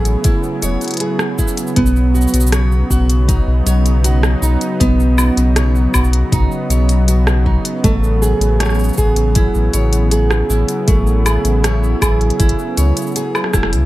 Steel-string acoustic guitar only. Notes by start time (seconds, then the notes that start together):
Already playing: A3 E4 G#4 C#5
0.24 E4
0.62 C#5
1.00 G#4
1.38 E4
1.76 B3
2.14 F#4
2.52 C#5
2.90 F#4
3.28 D#4
3.66 C#5
4.04 F#4
4.42 D#4
4.80 B3
5.18 F#4
5.56 C#5
5.94 F#4
6.32 D#4
6.70 C#5
7.08 F#4
7.46 D#4
7.84 A3
8.22 G#4
8.60 C#5
8.98 G#4
9.36 E4
9.74 C#5
10.12 G#4
10.50 E4
10.88 A3
11.26 G#4
11.64 C#5
12.01 G#4
12.40 E4
12.78 C#5
13.16 G#4
13.53 E4